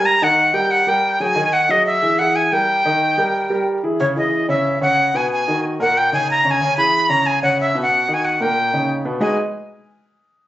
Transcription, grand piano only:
X:1
M:4/4
L:1/8
Q:1/4=183
K:G#m
V:1 name="Grand piano"
[=G,=GA] [D,Dd]2 [G,GA]2 [G,GA]2 [F,F^G] | [D,Dd]2 [F,FG]2 [E,EG] [E,EG]2 [=G,=GA]- | [=G,=GA] [D,Dd]2 [G,GA]2 [G,GA]2 [E,E^G] | [C,Cc] [E,EG]2 [C,Cc]2 [C,Cc]2 [B,,B,B]- |
[B,,B,B] [D,DF]2 [A,,A,A]2 [C,CD]2 [C,Cc] | [C,Cc] [E,EG]2 [C,Cc]2 [C,Cc]2 [B,,B,B]- | [B,,B,B] [D,DF]2 [A,,A,A]2 [C,CD]2 [B,,B,B] | [G,DFGBd] z6 z |]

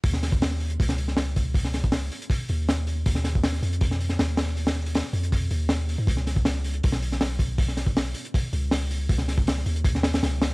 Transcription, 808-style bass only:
X:1
M:4/4
L:1/16
Q:1/4=159
K:Dbmix
V:1 name="808-style bass" clef=bass
E,,8 D,,8- | D,,6 z4 E,,6 | E,,6 F,,6 E,,4- | E,,4- E,, z F,,4 E,,4- E,, A,, |
D,,8 C,,8- | C,,6 z4 D,,6 | D,,6 E,,6 D,,4 |]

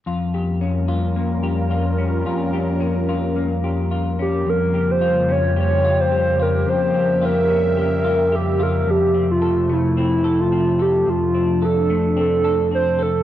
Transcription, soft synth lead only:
X:1
M:4/4
L:1/16
Q:1/4=109
K:Bblyd
V:1 name="Soft synth lead"
z16 | z12 z2 G2 | B3 c3 _d2 d3 c3 B2 | c4 B4 B4 G2 B2 |
G3 F3 E2 E3 F3 G2 | F4 A4 A4 c2 A2 |]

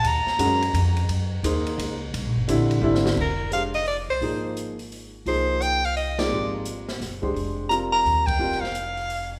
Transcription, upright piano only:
X:1
M:3/4
L:1/8
Q:"Swing" 1/4=172
K:Ebdor
V:1 name="Upright piano"
z2 [A,DGB] z3 | z2 [B,EAc]3 z | z2 [=D,=G,C=E]2 [D,G,CE]2 | [K:Fdor] z2 [A,DGc] z3 |
[F,B,EA]3 z3 | [F,B,EA]3 z2 [F,A,B,E] | [G,CFB]3 z2 [A,DGc]- | [A,DGc]2 [G,CFB]3 z |
[G,CFB] z4 z |]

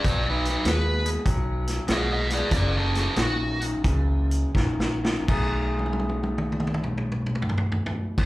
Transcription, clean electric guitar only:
X:1
M:4/4
L:1/8
Q:"Swing" 1/4=87
K:Bmix
V:1 name="Clean electric guitar" clef=bass
[B,,F,]2 [B,,G,] [B,,G,] [B,,F,]2 [B,,G,] [B,,G,] | [F,,C,]2 [F,,D,] [F,,D,] [F,,C,]2 [F,,D,] [F,,D,] | [B,,A,DG]8 |]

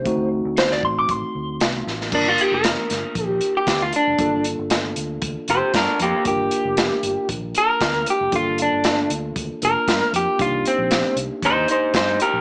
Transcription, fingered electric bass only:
X:1
M:4/4
L:1/16
Q:1/4=116
K:Gm
V:1 name="Fingered electric bass" clef=bass
D,,3 D,,3 A,,,2 A,,, z D,,2 C,,2 A,,,2 | G,,,2 z F,,,2 z G,,, z B,,,2 z2 D,,2 z F,,, | G,,,3 G,,,3 D,,2 D,, z F,,, z G,, z F,, z | G,,,2 z F,,,2 z G,,, z B,,,2 z2 D,,2 z F,,, |
G,,,3 G,,,3 D,,2 D,, z F,,, z G,, z F,, z | C,,2 z B,,,2 z C,, z E,,2 z2 G,,2 z B,,, |]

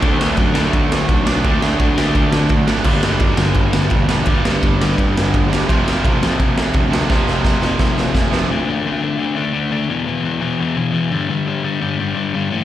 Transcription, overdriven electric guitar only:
X:1
M:4/4
L:1/8
Q:1/4=170
K:Dlyd
V:1 name="Overdriven electric guitar" clef=bass
[D,A,D]3 [D,A,D]4- [D,A,D] | [D,A,D]3 [D,A,D]4- [D,A,D] | [=G,,D,=G,]3 [G,,D,G,]4- [G,,D,G,] | [=G,,D,=G,]3 [G,,D,G,]4- [G,,D,G,] |
[=F,,=C,=F,]3 [F,,C,F,]4- [F,,C,F,] | [=F,,=C,=F,]3 [F,,C,F,]4- [F,,C,F,] | [D,A,D] [D,A,D] [D,A,D] [D,A,D] [D,A,D] [D,A,D] [D,A,D] [D,A,D] | [E,,B,,E,] [E,,B,,E,] [E,,B,,E,] [E,,B,,E,] [E,,B,,E,] [E,,B,,E,] [E,,B,,E,] [=G,,D,=G,] |
[=G,,D,=G,] [G,,D,G,] [G,,D,G,] [G,,D,G,] [G,,D,G,] [G,,D,G,] [G,,D,G,] [A,,E,A,] |]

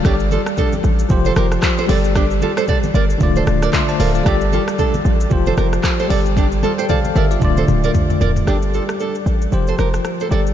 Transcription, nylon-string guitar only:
X:1
M:4/4
L:1/16
Q:"Swing 16ths" 1/4=114
K:F
V:1 name="Nylon-string guitar"
[DG] z [FA] z [DA]2 z3 [Ac] [GB] z2 [Ac] [Ad] z | [DG] z [FA] [Ac] [Ad] z [Bd] z2 [Ac] z [Bd] z2 [Bd] z | [DG] z [FA] z [DA]2 z3 [Ac] [GB] z2 [Ac] [Ad] z | [DG] z [FA] [Ac] [Ad] z [Bd] z2 [Ac] z [Bd] z2 [Bd] z |
[DG] z [FA] z [DA]2 z3 [Ac] [GB] z2 [Ac] [Ad] z |]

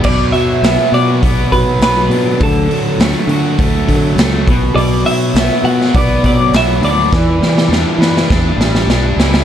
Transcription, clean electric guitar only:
X:1
M:4/4
L:1/8
Q:1/4=102
K:Bm
V:1 name="Clean electric guitar"
d e2 d2 B B2 | A2 z6 | d e2 f d d e d- | d6 z2 |]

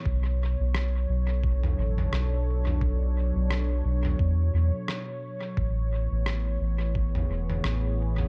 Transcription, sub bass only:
X:1
M:4/4
L:1/16
Q:"Swing 16ths" 1/4=87
K:Bdor
V:1 name="Sub bass" clef=bass
B,,,3 B,,,3 B,,,4 A,,,2 B,,,4- | B,,,3 B,,,3 B,,,2 E,,2 E,, z4 z | A,,,3 A,,,3 A,,,4 E,,,2 A,,,4 |]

